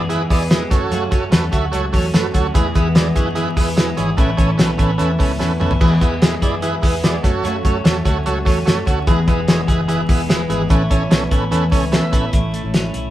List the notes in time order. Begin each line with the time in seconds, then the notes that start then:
Already playing: E2 F#2 E3 G#3 B3 G#4
0.01 G#4
0.09 E3 E4 G#4 B4, hi-hat pedal, open hi-hat
0.29 E2 E3 G#3 B3 E4 G#4 D5, kick, hi-hat pedal, open hi-hat
0.50 E3 G#3 B3 E4 G#4 B4, snare, hi-hat pedal, open hi-hat
0.70 F#2 F#3 A3 C#4 F#4 A4 C#5, kick, hi-hat pedal, open hi-hat
0.90 F#2 C#3 F#3 A3 C#4 F#4, hi-hat pedal, open hi-hat
1.11 F#2 F#3 A3 C#4 F#4 A4 C#5, kick, hi-hat pedal, open hi-hat
1.31 E2 A3 F#4 A4 B4, snare, hi-hat pedal, open hi-hat
1.52 D2 F#3 A3 C#4 F#4 A4 E5, kick, hi-hat pedal, open hi-hat
1.72 C#2 F#3 F#4 A4 C#5, hi-hat pedal, open hi-hat
1.92 E2 F#3 A3 C#4 F#4 A4 C#5, kick, hi-hat pedal, open hi-hat
2.14 F#2 F#3 A3 C#4 F#4 A4 B4, snare, hi-hat pedal, open hi-hat
2.34 D2 F#3 A3 C#4 F#4 A4 C#5, kick, hi-hat pedal, open hi-hat
2.54 E2 B2 E3 G#3 B3 E4 G#4 B4, kick, hi-hat pedal, open hi-hat
2.74 E2 E3 G#3 B3 E4 G#4 B4, kick, hi-hat pedal, open hi-hat
2.95 G#3 E4 G#4 D5, snare, hi-hat pedal, open hi-hat
3.15 F#2 E3 G#3 B3 E4 F#4 G#4 B4, kick, hi-hat pedal, open hi-hat
3.26 G#4
3.35 E3 E4 G#4 B4, hi-hat pedal, open hi-hat
3.56 E2 E3 G#3 B3 E4 G#4 B4, kick, hi-hat pedal, open hi-hat
3.76 E3 G#3 B3 E4 G#4 B4, snare, hi-hat pedal, open hi-hat
3.95 G#1 E3 G#3 B3 E4 G#4 C#5, hi-hat pedal, open hi-hat
4.17 A1 A2 E3 B3 C#4 E4 A4 B4, kick, hi-hat pedal, open hi-hat
4.37 A1 E3 B3 C#4 E4 A4 C#5, kick, hi-hat pedal, open hi-hat
4.49 C#4
4.57 B1 B3 C#4 A4 B4, snare, hi-hat pedal, open hi-hat
4.77 A1 E3 B3 C#4 E4 A4 B4, kick, hi-hat pedal, open hi-hat
4.98 E2 E3 C#4 A4 B4, hi-hat pedal, open hi-hat
5.18 C#2 E3 B3 C#4 E4 A4 B4, kick, hi-hat pedal, open hi-hat
5.39 E2 E3 B3 C#4 E4 A4 B4, snare
5.59 F#1 E3 B3 C#4 E4 A4 B4, mid tom
5.71 floor tom
5.80 E2 B2 E3 G#3 B3 E4 G#4 B4, kick, crash
6.00 E2 E3 G#3 B3 E4 G#4 B4, kick, hi-hat pedal, open hi-hat
6.21 G#3 E4 G#4 B4, snare, hi-hat pedal, open hi-hat
6.41 F#2 E3 G#3 B3 E4 G#4 D5, kick, hi-hat pedal, open hi-hat
6.62 E3 E4 G#4 B4, hi-hat pedal, open hi-hat
6.81 E2 E3 G#3 B3 E4 G#4 B4, kick, hi-hat pedal, open hi-hat
7.02 E3 G#3 B3 E4 G#4 D5, snare, hi-hat pedal, open hi-hat
7.22 F#2 F#3 A3 C#4 F#4 A4 C#5, kick, hi-hat pedal, open hi-hat
7.43 F#2 C#3 F#3 A3 C#4 F#4, hi-hat pedal, open hi-hat
7.63 F#2 F#3 A3 C#4 F#4 A4 C#5, kick, hi-hat pedal, open hi-hat
7.84 E2 A3 F#4 A4 C#5, snare, hi-hat pedal, open hi-hat
8.05 D2 F#3 A3 C#4 F#4 A4 C#5, kick, hi-hat pedal, open hi-hat
8.26 C#2 F#3 F#4 A4 C#5, hi-hat pedal, open hi-hat
8.45 E2 F#3 A3 C#4 F#4 A4 C#5, kick, hi-hat pedal, open hi-hat
8.65 F#2 F#3 A3 C#4 F#4 A4 C#5, snare, hi-hat pedal, open hi-hat
8.85 D2 F#3 A3 C#4 F#4 A4 C#5, kick, hi-hat pedal, open hi-hat
9.07 E1 E2 B2 E3 G#3 B3 E4 G#4 B4, kick, hi-hat pedal, open hi-hat
9.27 E1 E3 G#3 B3 E4 G#4 B4, kick, hi-hat pedal, open hi-hat
9.47 G#3 E4 G#4 C#5, snare, hi-hat pedal, open hi-hat
9.67 F#1 E3 G#3 B3 E4 G#4 B4, kick, hi-hat pedal, open hi-hat
9.88 E3 E4 G#4 B4, hi-hat pedal, open hi-hat
10.08 E1 E3 G#3 B3 E4 G#4 B4, kick, hi-hat pedal, open hi-hat
10.28 E3 G#3 B3 E4 G#4 B4, snare, hi-hat pedal, open hi-hat
10.48 G#1 E3 G#3 B3 E4 G#4 B4, hi-hat pedal, open hi-hat
10.68 A1 A2 E3 B3 C#4 E4 A4 B4, kick, hi-hat pedal, open hi-hat
10.89 A1 E3 B3 C#4 E4 A4 C#5, kick, hi-hat pedal, open hi-hat
11.10 B1 B3 C#4 A4 C#5, snare, hi-hat pedal, open hi-hat
11.30 A1 E3 B3 C#4 E4 A4 B4, kick, hi-hat pedal, open hi-hat
11.51 E2 E3 C#4 A4 B4, hi-hat pedal, open hi-hat
11.71 C#2 E3 B3 C#4 E4 A4 C#5, kick, hi-hat pedal, open hi-hat
11.91 E3 B3 C#4 E4 A4 B4 E5, snare, hi-hat pedal, open hi-hat
12.11 A1 E3 B3 C#4 E4 A4 B4, kick, hi-hat pedal, open hi-hat
12.32 A1 A2 E3 A3 C#4 E4, kick, closed hi-hat
12.53 A3, closed hi-hat
12.63 A1 A3 C#4 E4
12.74 C#4, snare, closed hi-hat
12.83 A3 C#4 E4
12.94 B1 E4, closed hi-hat